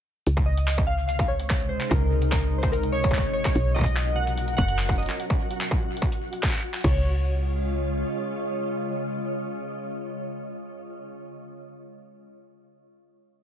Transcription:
0.27 C#2 C#3, closed hi-hat
0.37 kick
0.46 C3 D#5
0.53 G#3
0.57 closed hi-hat
0.68 clap, closed hi-hat
0.78 kick
0.87 F5
1.07 F5, closed hi-hat
1.19 D#4, kick, closed hi-hat
1.28 C#5
1.37 D#5, closed hi-hat
1.50 kick, clap, closed hi-hat
1.60 closed hi-hat
1.69 C5
1.81 clap, closed hi-hat
1.90 C#2 A#4, kick, closed hi-hat
2.22 closed hi-hat
2.31 A#4, kick, clap, closed hi-hat
2.58 C5
2.63 kick, closed hi-hat
2.72 A#4, closed hi-hat
2.83 closed hi-hat
2.92 C#5
3.04 G#1, kick, closed hi-hat
3.11 kick, clap, closed hi-hat
3.18 kick
3.33 C#5
3.45 kick, clap, closed hi-hat
3.55 B1 B2 F#4 F#5, closed hi-hat
3.62 F#3
3.72 A#4 D#5
3.76 kick
3.79 kick
3.81 kick
3.84 kick, closed hi-hat
3.96 clap, closed hi-hat
4.11 C#4
4.16 F#5
4.27 closed hi-hat
4.38 closed hi-hat
4.48 closed hi-hat
4.57 F#1 F#5, kick
4.68 closed hi-hat
4.79 clap, closed hi-hat
4.89 kick, closed hi-hat
4.92 closed hi-hat
4.96 D#5, closed hi-hat
4.99 closed hi-hat
5.03 closed hi-hat
5.06 clap, closed hi-hat
5.09 closed hi-hat
5.20 closed hi-hat
5.30 kick, closed hi-hat
5.51 closed hi-hat
5.61 clap, closed hi-hat
5.71 kick
5.97 closed hi-hat
6.02 kick, closed hi-hat
6.12 closed hi-hat
6.33 closed hi-hat
6.43 kick, clap, closed hi-hat
6.46 clap
6.48 clap
6.51 clap
6.53 clap, closed hi-hat
6.56 clap
6.58 clap
6.61 clap
6.74 clap, closed hi-hat
6.81 C#2 C#3 C#5, kick, closed hi-hat, crash
6.88 G#3, closed hi-hat
6.96 F4
7.02 C#5
7.09 D#5

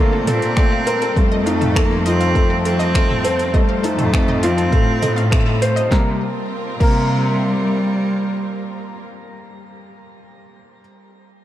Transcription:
Already playing: D3 G3 A3 A#3 C4 D4 F4 A4 A#4
0.13 A4
0.27 A#2 C4 A4, closed hi-hat, mid tom
0.42 closed hi-hat
0.57 A3 D5, finger snap, kick, closed hi-hat
0.72 F5
0.87 A4 A#4, closed hi-hat
1.02 A4, closed hi-hat
1.16 F2 G3 A3, kick, closed hi-hat
1.32 D#5
1.46 A3 D#4 F5, closed hi-hat
1.61 A4, closed hi-hat, mid tom
1.75 A3 A#3 A4, finger snap, kick, closed hi-hat
2.05 C4 F4 D#5, closed hi-hat
2.20 F5, closed hi-hat
2.35 A3 A4, kick, closed hi-hat
2.50 A4
2.64 C4 A4, closed hi-hat
2.79 D#5, closed hi-hat
2.94 A3 F5, finger snap, kick, closed hi-hat
3.09 A4, mid tom
3.24 A4 C5, closed hi-hat
3.39 closed hi-hat
3.54 G3 A3 D#5, kick, closed hi-hat
3.69 F5
3.83 A3 D#4 A4, closed hi-hat
3.98 F2 A4, closed hi-hat, mid tom
4.13 C4, finger snap, kick, closed hi-hat
4.28 D#5, mid tom
4.43 C4 F4 F5, closed hi-hat
4.58 A4, closed hi-hat
4.72 A2 A3 A4, kick, closed hi-hat
5.02 A2 A4 D#5, closed hi-hat, mid tom
5.16 F5, closed hi-hat
5.31 A3 A4, finger snap, kick, closed hi-hat
5.46 A4
5.62 C5, closed hi-hat
5.76 D#5, closed hi-hat
5.91 C3 G3 A#3 A#4, kick, snare
6.01 C4
6.10 F4
6.19 A#4
6.80 C3 G3 A#3 A#4, kick, crash

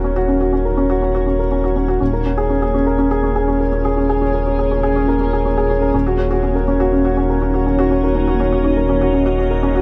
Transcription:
Already playing: D#1 A#3 C#4 D#4 F#4 A#4 C#5
0.04 C#4
0.16 F#4
0.29 C#4
0.41 F#4
0.53 C#4
0.65 A#4
0.77 C#4
0.90 F#4
1.02 C#4
1.15 F#4
1.27 C#4
1.39 A#4
1.51 C#4
1.64 F#4
1.76 C#4
1.88 F#4
2.01 D#1 C#4 F4 G#4
2.13 A#4
2.25 C#4
2.38 G#4
2.50 C#4
2.62 G#4
2.74 C#4
2.87 A#4
2.99 C#4
3.11 G#4
3.23 C#4
3.36 G#4
3.48 C#4
3.60 A#4
3.72 C#4
3.85 G#4
3.97 C#4
4.09 G#4
4.21 C#4
4.34 A#4
4.46 C#4
4.59 G#4
4.71 C#4
4.83 G#4
4.96 C#4
5.08 A#4
5.21 C#4
5.33 G#4
5.45 C#4
5.57 G#4
5.70 C#4
5.82 A#4
5.94 D#1 C#4 D#4 F#4
6.07 F#4
6.19 C#4
6.31 F#4
6.43 C#4
6.55 A#4
6.68 C#4
6.80 F#4
6.93 C#4
7.05 F#4
7.17 C#4
7.29 A#4
7.42 C#4
7.54 F#4
7.66 C#4
7.79 F#4
7.91 C#4 D#5
8.03 A#4
8.15 C#4
8.28 F#4
8.40 C#4
8.52 F#4
8.64 C#4
8.77 A#4
8.89 C#4
9.01 F#4
9.14 C#4
9.26 F#4
9.38 C#4
9.50 A#4
9.63 C#4
9.76 F#4

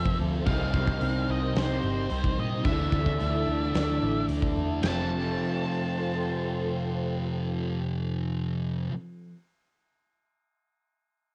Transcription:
Already playing: F1 F2 C3 F3 A3 C4 F4 G4 A4 C5 E5 A5
0.06 kick
0.19 D2 A3
0.45 C2 C3 D#3 G3 C4 D#4 A#4 F5 G5, kick, open hi-hat
0.73 C2 A#3, kick
0.87 kick
1.00 C2 C3 G3 A#3 C4, open hi-hat
1.29 C2 C4 D#5
1.54 C2 C3 G3 C4 G4 C5, snare, open hi-hat
1.83 G1 C4
2.09 C2 C3 G3 C4 G4, open hi-hat
2.24 kick
2.38 A#2 A#3 D#5
2.64 D2 D3 E3 A3 D4 E4 A4 D5 E5 A5, kick, open hi-hat
2.92 D2 A3, kick
3.06 kick
3.18 D2 D3 E3 A3 D4, open hi-hat
3.47 D2 A3
3.73 D2 D3 A3 D4, snare, open hi-hat
4.02 A1 A3
4.28 D2 D3 A3 D4, open hi-hat
4.42 kick
4.56 E2 E3
4.81 F1 F2 C3 F3 A3 C4 F4 A4 C5 G5 A5, snare, ride bell
4.85 F3 C4 G4

